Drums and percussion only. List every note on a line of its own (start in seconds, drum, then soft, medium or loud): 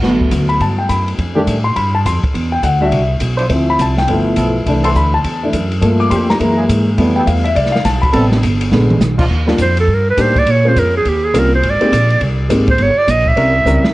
0.03 snare soft
0.21 kick medium
0.31 kick soft
0.31 hi-hat pedal medium
0.31 ride medium
0.49 ride soft
0.60 kick soft
0.60 ride medium
0.89 kick soft
0.89 hi-hat pedal medium
0.89 ride medium
1.08 ride soft
1.19 kick soft
1.19 ride medium
1.47 kick soft
1.47 hi-hat pedal medium
1.47 ride medium
1.76 kick soft
1.76 ride medium
2.05 kick soft
2.05 hi-hat pedal medium
2.05 ride medium
2.23 kick medium
2.23 ride soft
2.34 kick soft
2.34 ride medium
2.63 kick soft
2.63 hi-hat pedal medium
2.63 ride medium
2.92 kick soft
2.92 ride medium
3.20 kick soft
3.20 hi-hat pedal medium
3.20 ride medium
3.39 ride soft
3.50 kick soft
3.50 ride medium
3.79 kick soft
3.79 hi-hat pedal medium
3.79 ride medium
3.98 snare soft
4.08 kick soft
4.08 ride medium
4.36 kick soft
4.36 hi-hat pedal medium
4.36 ride medium
4.66 kick soft
4.66 ride medium
4.84 ride medium
4.95 kick soft
4.95 hi-hat pedal medium
5.24 kick soft
5.24 ride medium
5.53 kick soft
5.53 hi-hat pedal medium
5.53 ride medium
5.71 ride soft
5.82 kick soft
5.82 ride medium
6.11 kick soft
6.11 hi-hat pedal medium
6.11 ride medium
6.30 snare medium
6.30 ride soft
6.40 kick soft
6.40 ride medium
6.69 kick soft
6.69 hi-hat pedal medium
6.69 ride medium
6.98 kick soft
6.98 ride medium
7.27 kick soft
7.27 hi-hat pedal medium
7.27 ride medium
7.45 ride soft
7.56 kick soft
7.56 ride medium
7.66 snare soft
7.76 snare soft
7.85 kick soft
7.85 snare soft
7.85 hi-hat pedal medium
7.85 ride medium
8.03 kick medium
8.03 ride medium
8.13 kick soft
8.13 ride medium
8.32 snare soft
8.43 kick soft
8.43 hi-hat pedal medium
8.43 ride medium
8.61 ride medium
8.72 snare soft
8.90 mid tom medium
9.01 snare medium
9.01 hi-hat pedal medium
9.18 kick medium
9.18 crash medium
9.48 snare medium
9.58 kick soft
9.58 hi-hat pedal medium
9.58 ride medium
9.77 ride medium
9.88 kick soft
10.17 kick soft
10.17 hi-hat pedal medium
10.17 ride medium
10.36 kick soft
10.36 ride medium
10.46 kick soft
10.46 ride medium
10.76 kick soft
10.76 hi-hat pedal medium
10.76 ride medium
11.05 kick soft
11.05 ride medium
11.35 kick soft
11.35 hi-hat pedal medium
11.35 ride medium
11.63 kick soft
11.63 ride medium
11.81 ride medium
11.92 kick soft
11.92 hi-hat pedal medium
11.92 ride medium
12.10 ride soft
12.21 kick soft
12.21 ride medium
12.50 kick soft
12.50 hi-hat pedal medium
12.50 ride medium
12.68 kick medium
12.68 ride medium
12.78 kick soft
12.78 ride medium
13.08 kick soft
13.08 hi-hat pedal medium
13.08 ride medium
13.26 kick soft
13.37 kick soft
13.37 ride medium
13.66 hi-hat pedal medium
13.85 snare medium